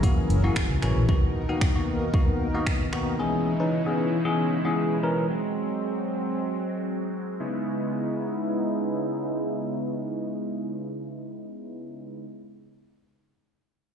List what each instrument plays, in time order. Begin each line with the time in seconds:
Already playing: supersaw synth F#3 C#4 E4 G#4 A#4
0.03 tine electric piano E3 A#3 C#4 F#4, kick, closed hi-hat
0.30 fingered electric bass F#1, closed hi-hat
0.43 tine electric piano E3 A#3 C#4 F#4
0.56 finger snap, kick, closed hi-hat
0.70 fingered electric bass C#2
0.82 fingered electric bass A1, tine electric piano E3 A#3 C#4 F#4, finger snap, closed hi-hat
0.96 fingered electric bass A#1
1.08 supersaw synth B2 D#4 A#4, tine electric piano D#3 A#3 B3 F#4, kick
1.49 tine electric piano D#3 A#3 B3 F#4
1.61 finger snap, kick
1.75 tine electric piano D#3 A#3 B3 F#4
2.14 tine electric piano D#3 A#3 B3 F#4, kick
2.54 tine electric piano D#3 A#3 B3 F#4
2.67 finger snap, kick
2.93 tine electric piano D#3 A#3 B3 F#4, finger snap
3.19 supersaw synth C#3 G#3 E4, tine electric piano E3 B3 C#4 G#4
3.59 tine electric piano E3 B3 C#4 D#4
3.86 tine electric piano E3 B3 C#4 G#4
4.25 tine electric piano E3 B3 C#4 G#4
4.65 tine electric piano E3 B3 C#4 G#4
5.03 tine electric piano E3 B3 C#4 A#4
5.30 supersaw synth F#3 C4
7.40 supersaw synth C#3 G#3 B3 D#4 E4